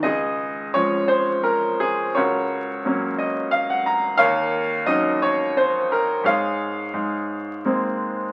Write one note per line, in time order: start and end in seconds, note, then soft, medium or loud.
0.03 2.13 C#2 soft
0.03 1.07 G#4 medium
0.03 0.77 D#5 medium
0.74 1.44 F3 soft
0.74 1.44 G#3 soft
0.74 1.44 C#4 soft
0.74 1.11 C#5 medium
1.08 1.42 C5 medium
1.43 1.82 A#4 medium
1.80 2.14 G#4 medium
2.15 4.15 C#2 medium
2.15 3.48 F#4 soft
2.15 3.48 A#4 soft
2.15 3.47 C#5 medium
2.85 3.50 F#3 soft
2.85 3.51 A#3 soft
2.85 3.51 C#4 soft
3.18 3.50 D#5 medium
3.51 3.67 F5 medium
3.70 3.85 F#5 medium
3.86 4.17 A#5 medium
4.17 6.19 D#2 medium
4.17 5.17 A#4 medium
4.17 5.17 C#5 medium
4.17 4.88 F5 medium
4.86 5.53 F#3 soft
4.86 5.53 C#4 soft
4.86 5.54 D#4 soft
4.86 5.22 D#5 medium
5.22 5.57 C#5 medium
5.57 5.91 C5 medium
5.92 6.26 A#4 medium
6.24 6.91 G#2 medium
6.24 7.62 G#4 medium
6.24 7.62 C#5 soft
6.24 7.62 F5 medium
6.93 8.32 G#2 medium
7.65 8.32 G#3 soft
7.65 8.32 A#3 soft
7.65 8.32 C4 soft